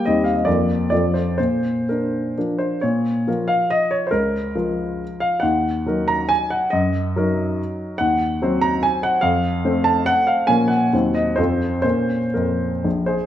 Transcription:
<<
  \new Staff \with { instrumentName = "Grand piano" } { \time 3/4 \key bes \major \tempo 4 = 137 ees''8 f''16 ees''16 d''4 d''8 c''8 | c''4 bes'4. c''8 | \key bes \minor des''4. f''8 \tuplet 3/2 { ees''8. des''8 c''16 } | bes'2 r8 f''8 |
ges''4. bes''8 aes''8 ges''8 | ees''2 r4 | ges''4. bes''8 aes''8 ges''8 | f''4. a''8 ges''8 f''8 |
aes''8 ges''4 ees''8 c''4 | c''4 bes'4. <aes' c''>8 | }
  \new Staff \with { instrumentName = "Grand piano" } { \time 3/4 \key bes \major <ees, g c' g'>4 <f, f bes bes'>4 <f, f c' a'>4 | bes,4 d'4 <f d' bes'>4 | \key bes \minor bes,4 <f f' bes'>2 | des,4 <f f' bes'>2 |
ees,4 <ges ees' bes'>2 | ges,4 <ges ees' bes'>2 | ees,4 <ges c' c''>2 | f,4 <a c' c''>2 |
<bes, f des' bes'>4 <ees, ges c' c''>4 <f, f c' a'>4 | <bes, des' bes'>4 f,4 bes,,4 | }
>>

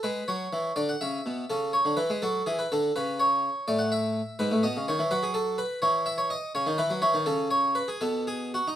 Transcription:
<<
  \new Staff \with { instrumentName = "Harpsichord" } { \time 6/8 \key a \major \tempo 4. = 83 b'8 cis''4 d''16 fis''16 e''4 | a'8 cis''8 b'8 a'8 gis'16 b'16 a'8 | b'8 cis''4 d''16 fis''16 e''4 | \key cis \minor b'8 dis''8 cis''8 b'16 gis'16 a'8 b'8 |
cis''8 e''16 cis''16 dis''8 cis''8 b'8 cis''8 | a'8 cis''8 b'16 gis'16 a'8 gis'8 fis'16 dis'16 | }
  \new Staff \with { instrumentName = "Harpsichord" } { \clef bass \time 6/8 \key a \major gis8 fis8 e8 d8 cis8 b,8 | cis8. d16 e16 gis16 fis8 e8 d8 | cis4. a,4. | \key cis \minor gis,16 a,16 b,16 cis16 dis16 e16 fis4. |
e4. cis16 dis16 e16 fis16 e16 dis16 | cis4. b,4. | }
>>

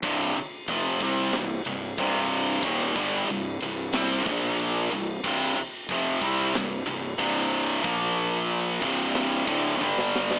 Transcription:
<<
  \new Staff \with { instrumentName = "Distorted electric guitar" } { \clef bass \time 4/4 \key c \minor \tempo 4 = 92 <c, g, c>8 r8 <f, c f>8 <c g c'>8 <c, g,>8 <c, g,>8 <c, g, c>4 | <ees, bes, ees>8 <g, d g>8 <c, g,>8 <c, g,>8 <c g c'>8 <bes, f bes>4 <c, g,>8 | <c, g, c>8 r8 <f, c f>8 <c g c'>8 <c, g,>8 <c, g,>8 <c, g, c>4 | <bes, f bes>4. <c, g, c>4 <d, a, d>8 <g, d g>4 | }
  \new Staff \with { instrumentName = "Fingered electric bass" } { \clef bass \time 4/4 \key c \minor c,,8 r8 f,,8 c,8 c,,8 c,,8 c,,4 | ees,,8 g,,8 c,,8 c,,8 c,8 bes,,4 c,,8 | c,,8 r8 f,,8 c,8 c,,8 c,,8 c,,4 | bes,,4. c,,4 d,,8 g,,4 | }
  \new DrumStaff \with { instrumentName = "Drums" } \drummode { \time 4/4 <bd cymr>8 cymr8 <bd cymr>8 <bd cymr>8 <cymr sn>8 cymr8 <bd cymr>8 cymr8 | <bd cymr>8 <bd cymr>8 cymr8 cymr8 <cymr sn>8 <bd cymr>8 cymr8 cymr8 | <cymc bd>8 cymr8 <bd cymr>8 <bd cymr>8 <cymr sn>8 cymr8 <bd cymr>8 cymr8 | <bd cymr>8 cymr8 cymr8 <bd cymr>8 <cymr sn>8 <bd cymr>8 tommh16 sn16 sn16 sn16 | }
>>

